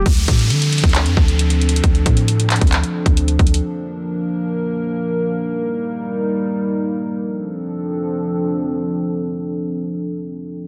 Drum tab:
HH |x-----x-----x-----x-----x-----x-----x--x--x--x--x-----x-----------x-----x-----x-----x---x---x---|x-----x-----x-----x-----x-----x-----x--x--x--x--x-----x-----------x-----x-----x-----x---x---x---|------------------------------------------------------------------------------------------------|------------------------------------------------------------------------------------------------|
CP |------------------------------------------------x-----------------------------------------------|------------------------------------x-----------x-----------------------------------------------|------------------------------------------------------------------------------------------------|------------------------------------------------------------------------------------------------|
BD |o-----------o-----------------------------o-----------------o-----------------------------------|o-----------o-----------------------------o-----------------------o-----------------o-----------|------------------------------------------------------------------------------------------------|------------------------------------------------------------------------------------------------|

HH |------------------------------------------------------------------------------------------------|------------------------------------------------------------------------------------------------|
CP |------------------------------------------------------------------------------------------------|------------------------------------------------------------------------------------------------|
BD |------------------------------------------------------------------------------------------------|------------------------------------------------------------------------------------------------|